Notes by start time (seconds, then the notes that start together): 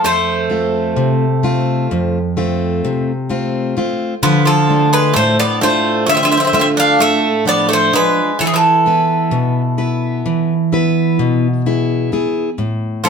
0.04 F2 A3 C5
0.50 A3 C4 F4
0.96 C3
1.43 A3 C4 F4
1.91 F2
2.37 A3 C4 F4
2.85 C3
3.29 A3 C4 F4
3.77 A3 C4 F4
4.23 D3 F3 B4
4.45 F3 A4
4.69 A3 D4 F4
4.93 G#3 B4
5.14 A2 A3 C5
5.40 B3 D5
5.61 A3 D4 F4 C5
6.06 D3 A3 E5
6.15 C4 E5
6.23 C4 E5
6.32 C4 E5
6.37 C4 E5
6.45 C4 E5
6.53 A3 C4 D4 F4 E5
6.60 C4 E5
6.77 D4 F5
6.99 A2 A3 E5
7.45 F3 B3 D4 F4 D5
7.69 A3
7.73 C5
7.93 G#3 D4 F4 B4
8.39 E3 A4
8.46 E3 G#4
8.54 E3 A4
8.86 B3 E4 B4
9.31 B2
9.78 B3 E4 B4
10.26 E3
10.73 B3 E4 B4
11.19 B2
11.66 B3 E4 G#4
12.12 B3 E4 G#4
12.58 A2
13.04 F3 A3 C4 E4 A4